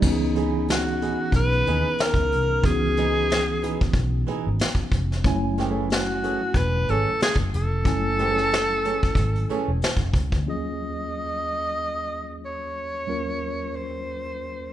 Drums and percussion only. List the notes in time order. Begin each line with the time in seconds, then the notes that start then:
0.02 kick, crash
0.36 closed hi-hat
0.68 snare, closed hi-hat
1.02 closed hi-hat
1.32 kick, closed hi-hat
1.52 closed hi-hat
1.67 closed hi-hat
1.98 snare, closed hi-hat
2.14 kick
2.32 closed hi-hat
2.64 kick, closed hi-hat
2.97 closed hi-hat
3.30 snare, closed hi-hat
3.63 closed hi-hat
3.81 kick
3.93 kick, closed hi-hat
4.28 closed hi-hat
4.59 snare, closed hi-hat
4.75 kick
4.92 kick, closed hi-hat
5.12 snare
5.24 kick, closed hi-hat
5.58 snare, closed hi-hat
5.90 snare, closed hi-hat
6.24 closed hi-hat
6.54 kick, closed hi-hat
6.88 closed hi-hat
7.20 snare, closed hi-hat
7.36 kick
7.54 closed hi-hat
7.85 kick, closed hi-hat
8.19 closed hi-hat
8.38 snare
8.52 snare, closed hi-hat
8.85 closed hi-hat
9.03 kick
9.15 kick, closed hi-hat
9.35 closed hi-hat
9.50 closed hi-hat
9.82 snare, closed hi-hat
9.97 kick
10.14 kick, closed hi-hat
10.32 kick